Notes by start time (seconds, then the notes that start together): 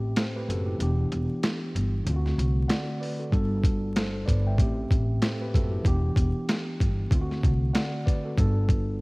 Already playing: A2 A3 C4 G4
0.16 A4 C5, snare, closed hi-hat
0.36 G4 B4
0.49 F#1 F#4 A4, closed hi-hat
0.66 E4 G4
0.78 E1 E3 B3 D4, closed hi-hat
0.82 G4
1.12 E1, closed hi-hat
1.43 snare, closed hi-hat
1.75 G1, closed hi-hat
2.05 D2 D3 A3 C4, closed hi-hat
2.10 F4
2.16 F#4
2.26 snare
2.38 C2, closed hi-hat
2.68 D5 F#5, snare, closed hi-hat
3.00 B4 D5, open hi-hat
3.19 F#4 A4
3.30 G1 G2 G3 D4, kick, closed hi-hat
3.35 A4
3.64 kick, closed hi-hat
3.96 A4 C5, snare, closed hi-hat
4.26 G1 B4 D5, kick, closed hi-hat
4.47 E5 G5
4.57 A1 A2 A3 C4, kick, closed hi-hat
4.62 G4
4.91 A1, kick, closed hi-hat
5.22 A4 C5, snare, closed hi-hat
5.42 G4 B4
5.54 F#1 F#4 A4, kick, closed hi-hat
5.71 E4 G4
5.83 E1 E3 B3 D4, kick, closed hi-hat
5.88 G4
6.16 E1, kick, closed hi-hat
6.49 snare, closed hi-hat
6.80 G1, kick, closed hi-hat
7.10 D2 D3 A3 C4, kick, closed hi-hat
7.15 F4
7.21 F#4
7.31 snare
7.43 C2, kick, closed hi-hat
7.73 D5 F#5, snare, closed hi-hat
8.06 B4 D5, kick, closed hi-hat
8.25 F#4 A4
8.35 G1 G2 G3 D4, kick, closed hi-hat
8.40 A4
8.69 kick, closed hi-hat